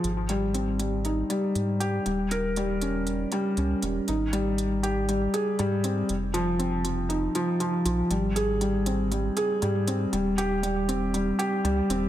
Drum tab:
HH |xxxxxxxx|xxxxxxxx|xxxxxxxx|xxxxxxxx|

HH |xxxxxxxx|xxxxxxxx|